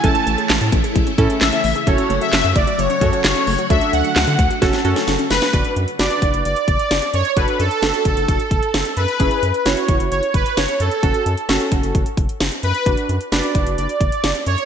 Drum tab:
HH |xxxxxxxxxxxxxxox|xxxxxxxxxxxxxxox|xxxxxxxxxxxxxxox|xxxxxxxxxxxxxxxx|
CP |----x-------x---|----x-------x---|----x-----------|----------------|
SD |----o-------o---|----o-------o---|----o---oo-oo-oo|----o-------o---|
BD |o-----o-o-o-----|o-----o---o-----|o-----o-o-------|o-----o---o-----|

HH |xxxxxxxxxxxxxxxx|xxxxxxxxxxxxxxxx|xxxxxxxxxxxxxxxx|xxxxxxxxxxxxxxxx|
CP |----------------|----------------|----------------|----------------|
SD |----o-------o---|----o-------o---|----o-------o---|----o-------o---|
BD |o-----o-o-o-----|o-----o---o-----|o-----o-o-o-----|o-----o---o-----|